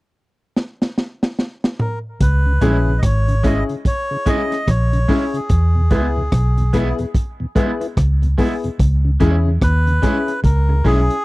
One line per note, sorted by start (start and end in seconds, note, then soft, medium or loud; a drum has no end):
0.56 snare medium
0.82 snare medium
0.98 snare medium
1.23 snare medium
1.39 snare medium
1.64 snare medium
1.80 1.99 A#4 medium
1.80 mid tom medium
2.20 2.58 C#2 loud
2.20 3.00 B4 medium
2.20 kick loud
2.20 closed hi-hat medium
2.46 2.53 C#3 medium
2.61 2.99 A#1 medium
2.61 2.76 G#3 medium
2.61 2.72 G#3 medium
2.61 2.88 C#4 loud
2.61 2.76 C#4 medium
2.61 2.73 C#4 medium
2.61 2.88 E4 medium
2.61 2.73 E4 medium
2.61 2.77 E4 medium
2.61 2.88 G#4 loud
2.61 kick medium
2.61 closed hi-hat medium
2.87 2.94 C#3 medium
2.98 3.03 D#5 medium
3.03 3.62 G#1 medium
3.03 3.46 C#5 medium
3.03 kick loud
3.03 cross-stick loud
3.03 closed hi-hat loud
3.28 3.35 C#3 medium
3.28 closed hi-hat soft
3.43 3.58 G#3 medium
3.43 3.55 G#3 medium
3.43 3.70 C#4 medium
3.43 3.58 C#4 medium
3.43 3.55 C#4 medium
3.43 3.70 E4 medium
3.43 3.55 E4 medium
3.43 3.59 E4 medium
3.43 3.71 G#4 loud
3.43 3.64 D#5 medium
3.43 kick medium
3.43 closed hi-hat medium
3.69 3.76 C#3 medium
3.69 closed hi-hat soft
3.85 4.28 C#5 loud
3.85 kick medium
3.85 closed hi-hat medium
4.11 4.17 C#3 medium
4.11 4.17 E4 soft
4.11 4.17 G#4 soft
4.26 4.41 G#3 medium
4.26 4.37 G#3 medium
4.26 4.52 C#4 medium
4.26 4.37 C#4 medium
4.26 4.41 C#4 medium
4.26 4.37 E4 medium
4.26 4.53 E4 medium
4.26 4.41 E4 medium
4.26 4.53 G#4 loud
4.26 4.70 D#5 loud
4.26 kick medium
4.26 closed hi-hat medium
4.51 muted clean electric guitar stroke soft
4.51 cross-stick medium
4.51 closed hi-hat medium
4.68 5.05 A#1 medium
4.68 5.37 C#5 medium
4.68 kick loud
4.68 cross-stick loud
4.68 closed hi-hat medium
4.93 5.00 C#3 medium
4.93 closed hi-hat soft
5.08 5.19 G#3 medium
5.08 5.23 G#3 medium
5.08 5.35 C#4 medium
5.08 5.19 C#4 medium
5.08 5.23 C#4 medium
5.08 5.19 E4 medium
5.08 5.35 E4 medium
5.08 5.23 E4 medium
5.08 5.35 G#4 medium
5.08 kick medium
5.08 open hi-hat medium
5.34 5.40 C#3 medium
5.34 6.95 G#4 medium
5.34 closed hi-hat soft
5.49 5.91 E2 medium
5.49 kick loud
5.49 closed hi-hat medium
5.75 5.82 E2 medium
5.75 5.82 B2 medium
5.90 6.28 C#2 medium
5.90 6.05 G#3 medium
5.90 6.02 G#3 medium
5.90 6.17 B3 medium
5.90 6.02 B3 medium
5.90 6.06 B3 medium
5.90 6.17 E4 medium
5.90 6.02 E4 medium
5.90 6.06 E4 medium
5.90 6.18 G#4 loud
5.90 kick medium
5.90 closed hi-hat medium
6.16 6.23 E2 medium
6.16 6.23 B2 medium
6.32 6.91 B1 medium
6.32 kick loud
6.32 cross-stick medium
6.32 closed hi-hat medium
6.58 6.64 E2 medium
6.58 6.64 B2 medium
6.58 closed hi-hat soft
6.73 6.88 G#3 medium
6.73 6.84 G#3 medium
6.73 6.99 B3 medium
6.73 6.84 B3 medium
6.73 6.88 B3 medium
6.73 6.98 E4 medium
6.73 6.84 E4 medium
6.73 6.88 E4 medium
6.73 6.98 G#4 loud
6.73 kick medium
6.73 closed hi-hat medium
6.99 7.06 E2 medium
6.99 7.05 B2 medium
6.99 7.05 E4 soft
6.99 7.05 G#4 soft
6.99 closed hi-hat soft
7.15 kick loud
7.15 closed hi-hat medium
7.40 7.47 E2 medium
7.40 7.47 B2 medium
7.55 7.66 G#3 medium
7.55 7.70 G#3 medium
7.55 7.82 B3 medium
7.55 7.66 B3 medium
7.55 7.70 B3 medium
7.55 7.66 E4 medium
7.55 7.82 E4 medium
7.55 7.71 E4 medium
7.55 7.82 G#4 medium
7.55 kick medium
7.55 closed hi-hat medium
7.80 7.87 B3 medium
7.80 7.87 E4 medium
7.80 muted clean electric guitar stroke soft
7.80 closed hi-hat medium
7.97 8.34 C#2 medium
7.97 kick loud
7.97 cross-stick loud
7.97 closed hi-hat medium
8.22 8.29 E2 soft
8.22 8.29 B2 medium
8.22 closed hi-hat soft
8.38 8.48 G#3 medium
8.38 8.52 G#3 medium
8.38 8.64 B3 medium
8.38 8.49 B3 medium
8.38 8.53 B3 medium
8.38 8.49 E4 medium
8.38 8.64 E4 medium
8.38 8.53 E4 medium
8.38 8.64 G#4 medium
8.38 kick medium
8.38 open hi-hat medium
8.64 8.70 E2 medium
8.64 8.70 B2 medium
8.64 closed hi-hat soft
8.79 9.16 C#2 medium
8.79 kick loud
8.79 closed hi-hat medium
9.05 9.11 C#3 medium
9.20 9.57 E2 medium
9.20 9.34 G#3 loud
9.20 9.31 G#3 medium
9.20 9.46 C#4 medium
9.20 9.35 C#4 medium
9.20 9.31 C#4 medium
9.20 9.46 E4 medium
9.20 9.31 E4 medium
9.20 9.35 E4 medium
9.20 9.47 G#4 loud
9.20 kick medium
9.20 closed hi-hat medium
9.45 9.52 C#3 medium
9.61 9.98 D#2 medium
9.61 10.40 B4 loud
9.61 kick loud
9.61 cross-stick loud
9.61 closed hi-hat medium
9.86 9.93 C#3 medium
9.86 closed hi-hat soft
10.02 10.13 G#3 medium
10.02 10.17 G#3 medium
10.02 10.28 C#4 medium
10.02 10.13 C#4 medium
10.02 10.17 C#4 medium
10.02 10.29 E4 medium
10.02 10.13 E4 medium
10.02 10.17 E4 loud
10.02 10.29 G#4 loud
10.02 kick medium
10.02 closed hi-hat medium
10.28 muted clean electric guitar stroke soft
10.28 closed hi-hat soft
10.44 10.80 C#2 loud
10.44 10.86 A#4 medium
10.44 kick medium
10.44 closed hi-hat medium
10.69 10.75 C#3 medium
10.69 10.75 E4 soft
10.69 10.75 G#4 soft
10.69 muted clean electric guitar stroke soft
10.84 11.07 B1 medium
10.84 10.99 G#3 medium
10.84 10.95 G#3 medium
10.84 11.11 C#4 medium
10.84 10.95 C#4 medium
10.84 10.99 C#4 medium
10.84 10.96 E4 medium
10.84 11.11 E4 medium
10.84 11.00 E4 medium
10.84 11.11 G#4 loud
10.84 11.25 G#4 loud
10.84 kick medium
10.84 open hi-hat soft
11.10 closed hi-hat medium